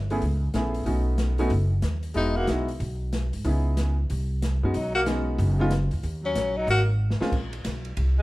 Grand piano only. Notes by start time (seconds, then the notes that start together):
0.11 A3 B3 C#4 E4 G#4
0.55 A3 B3 C#4 E4 G#4
0.86 A3 B3 C#4 D#4 F#4
1.39 A3 B3 C#4 D#4 F#4
2.14 G#3 B3 D#4 E4 F#4
2.47 G#3 B3 D#4 E4 F#4
3.45 B3 C#4 D#4 E4 G#4
4.63 G#3 B3 C#4 D#4 F#4
5.06 G#3 B3 C#4 D#4 F#4
5.59 G#3 B3 C#4 D#4 F4
7.20 G#3 A#3 C4 C#4 F4